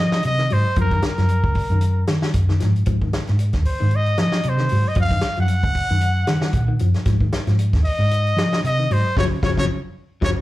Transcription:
0.00 0.22 F3 medium
0.00 0.23 D#5 loud
0.12 0.32 F#3 medium
0.12 snare medium
0.23 0.48 C3 loud
0.23 0.55 D#5 loud
0.23 closed hi-hat medium
0.38 0.48 D#3 medium
0.38 snare soft
0.50 0.65 G#2 medium
0.50 0.70 F#3 medium
0.50 0.79 C5 loud
0.50 open hi-hat medium
0.76 1.00 F#2 loud
0.76 0.88 F3 loud
0.76 kick medium
0.76 closed hi-hat medium
0.81 1.04 A#4 loud
0.91 1.11 D#3 medium
0.91 kick medium
0.91 closed hi-hat soft
1.02 snare medium
1.02 closed hi-hat medium
1.07 2.06 A#4 medium
1.17 1.41 F#2 medium
1.17 1.37 F3 medium
1.17 snare soft
1.17 closed hi-hat soft
1.29 closed hi-hat medium
1.44 1.55 C#2 medium
1.44 kick medium
1.55 muted fingered electric bass stroke soft
1.55 kick medium
1.55 open hi-hat medium
1.70 2.03 F#2 medium
1.70 1.90 D#3 medium
1.70 closed hi-hat soft
1.81 closed hi-hat medium
2.07 2.32 D#3 medium
2.07 snare medium
2.07 closed hi-hat medium
2.22 2.42 F#3 medium
2.22 snare medium
2.34 2.59 F#2 medium
2.34 kick medium
2.34 closed hi-hat medium
2.49 2.58 D#3 medium
2.49 snare soft
2.60 2.86 G#2 medium
2.60 2.79 F3 medium
2.60 snare soft
2.60 closed hi-hat medium
2.76 closed hi-hat soft
2.86 3.10 G#2 loud
2.86 2.98 F3 medium
2.86 kick medium
2.86 closed hi-hat medium
3.02 3.22 D#3 medium
3.02 kick medium
3.13 snare medium
3.13 closed hi-hat medium
3.27 3.52 G#2 medium
3.27 muted clean electric guitar stroke medium
3.27 snare soft
3.27 closed hi-hat soft
3.39 closed hi-hat medium
3.53 3.64 D#2 medium
3.53 kick medium
3.53 snare soft
3.53 closed hi-hat soft
3.65 3.97 C5 medium
3.65 muted fingered electric bass stroke soft
3.65 open hi-hat medium
3.80 4.14 G#2 medium
3.80 3.99 D#3 medium
3.91 closed hi-hat medium
3.96 4.21 D#5 loud
4.06 closed hi-hat soft
4.17 4.42 F3 medium
4.17 4.50 D#5 loud
4.17 snare medium
4.17 closed hi-hat medium
4.32 4.52 F#3 medium
4.32 snare medium
4.43 4.68 C3 loud
4.43 closed hi-hat medium
4.49 4.90 C5 medium
4.58 4.68 D#3 medium
4.58 snare soft
4.69 4.84 G#2 loud
4.69 4.90 F#3 medium
4.69 open hi-hat medium
4.88 4.99 D#5 medium
4.95 5.20 F#2 loud
4.95 5.07 F3 loud
4.95 kick medium
4.95 closed hi-hat medium
5.01 5.37 F5 loud
5.10 5.30 D#3 medium
5.10 kick medium
5.10 closed hi-hat soft
5.21 snare medium
5.21 closed hi-hat medium
5.36 5.61 F#2 medium
5.36 5.57 F3 medium
5.36 closed hi-hat soft
5.41 6.78 F#5 loud
5.48 closed hi-hat medium
5.63 5.74 C#2 medium
5.63 kick medium
5.74 kick medium
5.74 open hi-hat medium
5.89 6.23 F#2 medium
5.89 6.09 D#3 medium
5.89 closed hi-hat soft
6.01 closed hi-hat medium
6.27 6.51 D#3 medium
6.27 snare medium
6.27 closed hi-hat medium
6.41 6.61 F#3 medium
6.41 snare medium
6.53 6.77 A#2 loud
6.53 kick medium
6.53 closed hi-hat medium
6.68 6.77 D#3 medium
6.79 6.94 F#2 medium
6.79 6.99 F3 medium
6.79 closed hi-hat medium
6.94 snare soft
6.94 closed hi-hat soft
7.05 7.29 G#2 loud
7.05 7.17 F3 medium
7.05 kick medium
7.05 snare soft
7.05 closed hi-hat medium
7.21 7.40 D#3 medium
7.21 kick medium
7.32 snare medium
7.32 closed hi-hat medium
7.47 7.70 G#2 medium
7.47 7.66 F3 medium
7.47 snare soft
7.47 closed hi-hat soft
7.59 closed hi-hat medium
7.73 7.84 D#2 medium
7.73 kick medium
7.73 snare soft
7.73 closed hi-hat soft
7.84 8.60 D#5 loud
7.84 muted fingered electric bass stroke soft
7.84 open hi-hat medium
7.99 8.32 G#2 medium
7.99 muted clean electric guitar stroke medium
8.11 closed hi-hat medium
8.26 closed hi-hat soft
8.37 8.60 F3 medium
8.37 snare medium
8.37 closed hi-hat medium
8.52 8.71 F#3 medium
8.52 snare medium
8.64 8.87 C3 loud
8.64 8.94 D#5 loud
8.64 closed hi-hat medium
8.79 8.88 D#3 medium
8.91 9.03 G#2 medium
8.91 9.10 F#3 medium
8.91 9.18 C5 loud
8.91 open hi-hat medium
9.17 9.28 F#1 loud
9.17 9.26 C#3 medium
9.17 9.26 F3 loud
9.17 9.26 F#3 medium
9.17 9.25 C#5 loud
9.17 kick medium
9.17 snare medium
9.43 9.54 F#1 medium
9.43 9.52 C#3 medium
9.43 9.53 F3 loud
9.43 9.52 F#3 medium
9.43 9.51 C#5 medium
9.43 kick medium
9.43 snare medium
9.57 9.67 F#1 loud
9.57 9.66 C#3 loud
9.57 9.66 F3 medium
9.57 9.66 F#3 medium
9.57 9.65 C#5 loud
9.57 kick medium
9.57 snare medium
10.21 10.33 F#1 loud
10.21 10.31 C#3 medium
10.21 10.31 F3 medium
10.21 10.31 F#3 medium
10.21 10.31 C#5 loud
10.21 kick medium
10.21 snare medium

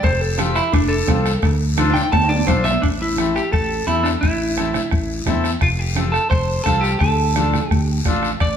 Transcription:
0.03 0.59 F1 medium
0.03 0.21 C5 medium
0.03 bombo low medium
0.03 bombo rim medium
0.03 cowbell loud
0.03 high conga soft
0.03 long guiro medium
0.21 0.40 A4 medium
0.37 0.62 C4 medium
0.37 0.62 F4 medium
0.37 0.56 G4 medium
0.37 0.62 A4 medium
0.37 bombo rim medium
0.37 cowbell medium
0.37 high conga medium
0.37 short guiro medium
0.55 0.72 E4 loud
0.55 bombo rim medium
0.55 short guiro medium
0.72 1.01 F1 medium
0.72 0.90 D4 loud
0.72 bombo low medium
0.72 bombo rim medium
0.72 cowbell medium
0.72 long guiro medium
0.88 1.57 A4 medium
1.07 1.36 C2 medium
1.07 1.32 C4 medium
1.07 1.32 F4 medium
1.07 1.32 A4 medium
1.07 bombo low medium
1.07 bombo rim medium
1.07 cowbell medium
1.07 high conga medium
1.07 low timbale medium
1.07 short guiro medium
1.26 bombo rim medium
1.26 short guiro medium
1.42 1.99 D2 medium
1.42 bombo low medium
1.42 bombo rim medium
1.42 cowbell loud
1.42 high conga soft
1.42 long guiro medium
1.77 2.02 D4 medium
1.77 2.02 F4 medium
1.77 2.02 A4 loud
1.77 bombo rim medium
1.77 cowbell medium
1.77 high conga medium
1.77 high timbale loud
1.77 short guiro medium
1.90 2.11 G5 loud
1.90 high timbale medium
1.94 bombo rim medium
1.94 low conga medium
1.94 short guiro medium
2.01 high timbale medium
2.12 2.41 D2 medium
2.12 2.29 A5 medium
2.12 bombo low medium
2.12 bombo rim medium
2.12 cowbell medium
2.12 high conga soft
2.12 low timbale loud
2.12 long guiro medium
2.24 high timbale medium
2.29 2.46 D5 loud
2.29 high conga medium
2.36 low timbale medium
2.47 2.76 B1 medium
2.47 2.72 D4 medium
2.47 2.72 F4 medium
2.47 2.72 A4 medium
2.47 2.64 C5 medium
2.47 bombo low medium
2.47 bombo rim medium
2.47 cowbell medium
2.47 high conga medium
2.47 low timbale medium
2.47 short guiro medium
2.64 2.81 E5 loud
2.64 bombo rim medium
2.64 low conga medium
2.64 short guiro medium
2.70 low timbale medium
2.82 3.39 A1 medium
2.82 2.87 D4 medium
2.82 bombo low medium
2.82 bombo rim medium
2.82 high conga soft
2.82 long guiro medium
3.02 3.37 E4 medium
3.17 3.42 C4 medium
3.17 3.42 E4 medium
3.17 3.42 A4 medium
3.17 bombo rim medium
3.17 high conga medium
3.17 short guiro medium
3.36 3.51 G4 medium
3.36 bombo rim medium
3.36 short guiro medium
3.52 3.81 A1 medium
3.52 3.85 A4 loud
3.52 bombo low medium
3.52 bombo rim medium
3.52 high conga soft
3.52 long guiro medium
3.87 4.15 E2 medium
3.87 4.11 C4 medium
3.87 4.05 E4 medium
3.87 4.12 E4 medium
3.87 4.12 A4 medium
3.87 bombo rim medium
3.87 high conga medium
3.87 short guiro medium
4.03 4.08 D4 medium
4.03 bombo rim medium
4.03 short guiro medium
4.21 4.79 A1 medium
4.21 5.22 E4 medium
4.21 bombo low medium
4.21 bombo rim medium
4.21 high conga soft
4.21 long guiro medium
4.56 4.81 C4 medium
4.56 4.81 E4 medium
4.56 4.81 A4 medium
4.56 bombo rim medium
4.56 high conga medium
4.56 short guiro medium
4.74 bombo rim medium
4.74 low conga medium
4.74 short guiro medium
4.91 5.20 A1 medium
4.91 bombo low medium
4.91 bombo rim medium
4.91 high conga soft
4.91 long guiro medium
5.26 5.55 E2 medium
5.26 5.51 C4 medium
5.26 5.51 E4 medium
5.26 5.51 A4 loud
5.26 bombo low medium
5.26 bombo rim medium
5.26 high conga medium
5.26 low conga medium
5.26 short guiro medium
5.44 bombo rim medium
5.44 short guiro medium
5.61 6.17 F1 medium
5.61 5.67 F4 medium
5.61 bombo low medium
5.61 bombo rim medium
5.61 high conga soft
5.61 long guiro medium
5.79 6.15 G4 loud
5.95 6.21 C4 medium
5.95 6.21 F4 medium
5.95 6.21 A4 medium
5.95 bombo rim medium
5.95 high conga medium
5.95 short guiro medium
6.12 6.29 A4 medium
6.12 bombo rim medium
6.12 short guiro medium
6.30 6.59 F1 medium
6.30 6.63 C5 loud
6.30 bombo low medium
6.30 bombo rim medium
6.30 high conga soft
6.30 long guiro medium
6.64 6.94 C2 medium
6.64 6.90 C4 medium
6.64 6.90 F4 medium
6.64 6.83 A4 loud
6.64 6.90 A4 medium
6.64 bombo low medium
6.64 bombo rim medium
6.64 high conga medium
6.64 short guiro medium
6.81 6.98 G4 medium
6.81 bombo rim medium
6.81 short guiro medium
6.99 7.57 D2 medium
6.99 7.70 A4 medium
6.99 bombo low medium
6.99 bombo rim medium
6.99 high conga soft
6.99 long guiro medium
7.36 7.60 D4 medium
7.36 7.60 F4 medium
7.36 7.61 A4 medium
7.36 bombo rim medium
7.36 high conga medium
7.36 short guiro medium
7.53 bombo rim medium
7.53 low conga medium
7.53 short guiro medium
7.70 7.99 D2 medium
7.70 8.01 G4 medium
7.70 bombo low medium
7.70 bombo rim medium
7.70 high conga soft
7.70 long guiro medium
8.05 8.34 A1 medium
8.05 8.30 D4 medium
8.05 8.30 F4 medium
8.05 8.31 A4 medium
8.05 bombo low medium
8.05 bombo rim medium
8.05 high conga medium
8.05 low conga medium
8.05 short guiro medium
8.23 bombo rim medium
8.23 short guiro medium
8.40 8.57 A1 medium
8.40 8.57 D5 loud
8.40 bombo low medium
8.40 bombo rim medium
8.40 high conga soft
8.40 high timbale medium
8.40 long guiro medium

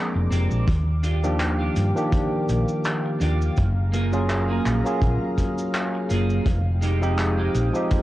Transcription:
0.00 0.70 F3 loud
0.00 0.64 G#3 medium
0.00 0.67 G#3 medium
0.00 0.69 A#3 medium
0.00 0.69 C4 medium
0.00 0.70 D4 medium
0.00 0.70 G#4 loud
0.00 0.65 C5 medium
0.00 0.65 A#5 medium
0.00 3.53 D6 medium
0.14 0.27 F1 medium
0.14 muted clean electric guitar stroke medium
0.31 0.46 F1 loud
0.31 0.67 C4 loud
0.31 0.68 D4 loud
0.31 0.68 G4 loud
0.31 closed hi-hat medium
0.31 cabasa medium
0.51 0.64 A#1 medium
0.51 cabasa soft
0.68 1.69 D#2 loud
0.68 3.54 G4 medium
0.68 8.02 F5 medium
0.68 kick loud
0.68 closed hi-hat medium
0.68 cabasa soft
1.03 1.32 D4 loud
1.03 1.32 F4 loud
1.03 1.32 G4 loud
1.03 closed hi-hat medium
1.03 cabasa medium
1.24 1.92 D#3 medium
1.24 1.91 F3 loud
1.24 1.91 A#3 medium
1.24 1.92 D4 medium
1.24 1.92 G4 loud
1.24 cabasa medium
1.40 clap loud
1.40 closed hi-hat medium
1.40 cabasa soft
1.59 1.86 D4 medium
1.59 1.86 F4 medium
1.59 1.87 G4 loud
1.76 1.91 G2 medium
1.76 closed hi-hat medium
1.76 cabasa medium
1.95 3.56 D#3 medium
1.95 3.55 F3 medium
1.95 3.55 A#3 medium
1.95 3.55 D4 medium
1.95 3.56 G4 loud
1.95 cabasa medium
2.12 kick loud
2.12 closed hi-hat medium
2.12 cabasa soft
2.31 muted clean electric guitar stroke soft
2.49 2.63 A#1 medium
2.49 closed hi-hat medium
2.49 cabasa medium
2.68 cabasa soft
2.84 clap loud
2.84 closed hi-hat medium
2.84 cabasa soft
3.04 muted clean electric guitar stroke medium
3.20 3.48 D#2 loud
3.20 3.57 D4 loud
3.20 3.57 F4 loud
3.20 3.58 G4 loud
3.20 closed hi-hat medium
3.20 cabasa medium
3.42 cabasa soft
3.57 4.59 F#1 loud
3.57 6.43 G#4 medium
3.57 6.43 A#5 medium
3.57 kick loud
3.57 closed hi-hat medium
3.57 cabasa soft
3.92 4.21 A#3 loud
3.92 4.21 F4 loud
3.92 4.22 G#4 loud
3.92 closed hi-hat medium
3.92 cabasa medium
4.13 4.80 F#3 loud
4.13 4.81 A#3 medium
4.13 4.81 C#4 medium
4.13 4.81 F4 medium
4.13 4.81 G#4 loud
4.13 cabasa medium
4.30 clap loud
4.30 closed hi-hat medium
4.30 cabasa soft
4.48 4.75 A#3 medium
4.48 4.75 F4 medium
4.48 4.76 G#4 loud
4.66 4.80 A#1 medium
4.66 clap medium
4.66 closed hi-hat medium
4.66 cabasa medium
4.84 6.44 F#3 medium
4.84 6.44 A#3 medium
4.84 6.44 C#4 medium
4.84 6.45 F4 medium
4.84 6.45 G#4 loud
4.84 cabasa medium
5.01 5.16 A#1 loud
5.01 muted clean electric guitar stroke soft
5.01 kick loud
5.01 closed hi-hat medium
5.01 cabasa soft
5.21 muted clean electric guitar stroke soft
5.38 kick medium
5.38 closed hi-hat medium
5.38 cabasa medium
5.58 cabasa medium
5.74 clap loud
5.74 closed hi-hat medium
5.74 cabasa soft
5.93 muted clean electric guitar stroke medium
6.09 6.38 F#1 loud
6.09 6.46 A#3 loud
6.09 6.46 F4 loud
6.09 6.47 G#4 loud
6.09 closed hi-hat medium
6.09 cabasa medium
6.30 cabasa soft
6.46 7.47 F1 loud
6.46 8.02 G#3 medium
6.46 8.02 G5 medium
6.46 8.02 D#6 medium
6.46 kick loud
6.46 closed hi-hat medium
6.46 cabasa soft
6.81 7.10 G#3 loud
6.81 7.10 D#4 loud
6.81 7.11 G4 loud
6.81 closed hi-hat medium
6.81 cabasa medium
7.02 7.69 F3 loud
7.02 7.70 G#3 medium
7.02 7.70 C4 medium
7.02 7.70 D#4 medium
7.02 7.70 G4 loud
7.02 cabasa medium
7.19 clap loud
7.19 closed hi-hat medium
7.19 cabasa soft
7.37 7.64 G#3 medium
7.37 7.65 D#4 medium
7.37 7.65 G4 loud
7.54 7.69 A#1 loud
7.54 closed hi-hat medium
7.54 cabasa medium
7.73 8.02 F3 medium
7.73 8.02 G#3 medium
7.73 8.02 C4 medium
7.73 8.02 D#4 medium
7.73 8.02 G4 loud
7.73 cabasa medium
7.90 muted clean electric guitar stroke soft
7.90 kick loud
7.90 closed hi-hat medium
7.90 cabasa soft

